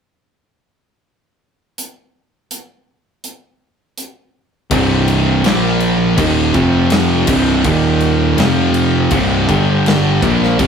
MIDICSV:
0, 0, Header, 1, 4, 480
1, 0, Start_track
1, 0, Key_signature, -3, "minor"
1, 0, Tempo, 734394
1, 1164, Time_signature, 4, 2, 24, 8
1, 6974, End_track
2, 0, Start_track
2, 0, Title_t, "Distorted electric guitar"
2, 0, Program_c, 0, 30
2, 3075, Note_on_c, 0, 36, 91
2, 3080, Note_on_c, 0, 43, 105
2, 3082, Note_on_c, 0, 48, 96
2, 3551, Note_off_c, 0, 36, 0
2, 3553, Note_off_c, 0, 43, 0
2, 3554, Note_off_c, 0, 48, 0
2, 3556, Note_on_c, 0, 46, 93
2, 3558, Note_on_c, 0, 53, 91
2, 3564, Note_on_c, 0, 58, 96
2, 4031, Note_off_c, 0, 46, 0
2, 4032, Note_off_c, 0, 53, 0
2, 4035, Note_off_c, 0, 58, 0
2, 4044, Note_on_c, 0, 39, 82
2, 4049, Note_on_c, 0, 46, 98
2, 4052, Note_on_c, 0, 51, 108
2, 4275, Note_off_c, 0, 39, 0
2, 4275, Note_on_c, 0, 41, 93
2, 4276, Note_off_c, 0, 46, 0
2, 4276, Note_on_c, 0, 48, 94
2, 4282, Note_off_c, 0, 51, 0
2, 4282, Note_on_c, 0, 53, 90
2, 4748, Note_off_c, 0, 41, 0
2, 4750, Note_on_c, 0, 36, 99
2, 4752, Note_off_c, 0, 48, 0
2, 4755, Note_off_c, 0, 53, 0
2, 4759, Note_on_c, 0, 43, 92
2, 4762, Note_on_c, 0, 48, 88
2, 4989, Note_off_c, 0, 36, 0
2, 4993, Note_off_c, 0, 43, 0
2, 4995, Note_off_c, 0, 48, 0
2, 4995, Note_on_c, 0, 39, 100
2, 5000, Note_on_c, 0, 46, 105
2, 5004, Note_on_c, 0, 51, 100
2, 5472, Note_off_c, 0, 39, 0
2, 5474, Note_off_c, 0, 46, 0
2, 5476, Note_off_c, 0, 51, 0
2, 5477, Note_on_c, 0, 41, 94
2, 5486, Note_on_c, 0, 48, 98
2, 5487, Note_on_c, 0, 53, 106
2, 5953, Note_off_c, 0, 41, 0
2, 5957, Note_off_c, 0, 48, 0
2, 5958, Note_off_c, 0, 53, 0
2, 5960, Note_on_c, 0, 36, 100
2, 5967, Note_on_c, 0, 43, 95
2, 5970, Note_on_c, 0, 48, 106
2, 6200, Note_off_c, 0, 36, 0
2, 6200, Note_off_c, 0, 43, 0
2, 6200, Note_on_c, 0, 43, 80
2, 6204, Note_on_c, 0, 50, 105
2, 6208, Note_off_c, 0, 48, 0
2, 6208, Note_on_c, 0, 55, 96
2, 6675, Note_off_c, 0, 43, 0
2, 6677, Note_off_c, 0, 50, 0
2, 6678, Note_on_c, 0, 46, 90
2, 6679, Note_off_c, 0, 55, 0
2, 6682, Note_on_c, 0, 53, 90
2, 6687, Note_on_c, 0, 58, 105
2, 6914, Note_off_c, 0, 46, 0
2, 6916, Note_off_c, 0, 53, 0
2, 6918, Note_off_c, 0, 58, 0
2, 6927, Note_on_c, 0, 41, 102
2, 6935, Note_on_c, 0, 48, 96
2, 6937, Note_on_c, 0, 53, 107
2, 6974, Note_off_c, 0, 41, 0
2, 6974, Note_off_c, 0, 48, 0
2, 6974, Note_off_c, 0, 53, 0
2, 6974, End_track
3, 0, Start_track
3, 0, Title_t, "Fingered electric bass"
3, 0, Program_c, 1, 33
3, 3080, Note_on_c, 1, 24, 84
3, 3534, Note_off_c, 1, 24, 0
3, 3565, Note_on_c, 1, 34, 92
3, 4017, Note_off_c, 1, 34, 0
3, 4036, Note_on_c, 1, 27, 97
3, 4262, Note_off_c, 1, 27, 0
3, 4279, Note_on_c, 1, 29, 95
3, 4734, Note_off_c, 1, 29, 0
3, 4756, Note_on_c, 1, 24, 107
3, 4982, Note_off_c, 1, 24, 0
3, 4999, Note_on_c, 1, 27, 98
3, 5454, Note_off_c, 1, 27, 0
3, 5477, Note_on_c, 1, 29, 102
3, 5934, Note_off_c, 1, 29, 0
3, 5957, Note_on_c, 1, 24, 102
3, 6183, Note_off_c, 1, 24, 0
3, 6203, Note_on_c, 1, 31, 99
3, 6657, Note_off_c, 1, 31, 0
3, 6688, Note_on_c, 1, 34, 105
3, 6909, Note_off_c, 1, 34, 0
3, 6926, Note_on_c, 1, 29, 99
3, 6974, Note_off_c, 1, 29, 0
3, 6974, End_track
4, 0, Start_track
4, 0, Title_t, "Drums"
4, 1164, Note_on_c, 9, 42, 68
4, 1230, Note_off_c, 9, 42, 0
4, 1640, Note_on_c, 9, 42, 65
4, 1705, Note_off_c, 9, 42, 0
4, 2117, Note_on_c, 9, 42, 58
4, 2182, Note_off_c, 9, 42, 0
4, 2598, Note_on_c, 9, 42, 65
4, 2664, Note_off_c, 9, 42, 0
4, 3077, Note_on_c, 9, 49, 95
4, 3078, Note_on_c, 9, 36, 113
4, 3142, Note_off_c, 9, 49, 0
4, 3143, Note_off_c, 9, 36, 0
4, 3318, Note_on_c, 9, 49, 66
4, 3384, Note_off_c, 9, 49, 0
4, 3557, Note_on_c, 9, 49, 80
4, 3570, Note_on_c, 9, 38, 105
4, 3622, Note_off_c, 9, 49, 0
4, 3636, Note_off_c, 9, 38, 0
4, 3793, Note_on_c, 9, 49, 60
4, 3858, Note_off_c, 9, 49, 0
4, 4036, Note_on_c, 9, 49, 92
4, 4039, Note_on_c, 9, 36, 114
4, 4101, Note_off_c, 9, 49, 0
4, 4104, Note_off_c, 9, 36, 0
4, 4274, Note_on_c, 9, 49, 52
4, 4278, Note_on_c, 9, 36, 94
4, 4340, Note_off_c, 9, 49, 0
4, 4343, Note_off_c, 9, 36, 0
4, 4510, Note_on_c, 9, 49, 84
4, 4524, Note_on_c, 9, 38, 114
4, 4576, Note_off_c, 9, 49, 0
4, 4590, Note_off_c, 9, 38, 0
4, 4752, Note_on_c, 9, 49, 110
4, 4757, Note_on_c, 9, 36, 109
4, 4817, Note_off_c, 9, 49, 0
4, 4822, Note_off_c, 9, 36, 0
4, 4995, Note_on_c, 9, 49, 87
4, 4997, Note_on_c, 9, 36, 124
4, 5060, Note_off_c, 9, 49, 0
4, 5063, Note_off_c, 9, 36, 0
4, 5231, Note_on_c, 9, 49, 63
4, 5297, Note_off_c, 9, 49, 0
4, 5476, Note_on_c, 9, 49, 83
4, 5490, Note_on_c, 9, 38, 107
4, 5541, Note_off_c, 9, 49, 0
4, 5555, Note_off_c, 9, 38, 0
4, 5713, Note_on_c, 9, 49, 65
4, 5778, Note_off_c, 9, 49, 0
4, 5951, Note_on_c, 9, 49, 79
4, 5958, Note_on_c, 9, 36, 115
4, 6017, Note_off_c, 9, 49, 0
4, 6024, Note_off_c, 9, 36, 0
4, 6201, Note_on_c, 9, 36, 100
4, 6203, Note_on_c, 9, 49, 55
4, 6267, Note_off_c, 9, 36, 0
4, 6268, Note_off_c, 9, 49, 0
4, 6445, Note_on_c, 9, 49, 74
4, 6458, Note_on_c, 9, 38, 103
4, 6510, Note_off_c, 9, 49, 0
4, 6524, Note_off_c, 9, 38, 0
4, 6683, Note_on_c, 9, 36, 105
4, 6685, Note_on_c, 9, 49, 65
4, 6748, Note_off_c, 9, 36, 0
4, 6750, Note_off_c, 9, 49, 0
4, 6818, Note_on_c, 9, 38, 37
4, 6883, Note_off_c, 9, 38, 0
4, 6922, Note_on_c, 9, 49, 86
4, 6923, Note_on_c, 9, 36, 107
4, 6974, Note_off_c, 9, 36, 0
4, 6974, Note_off_c, 9, 49, 0
4, 6974, End_track
0, 0, End_of_file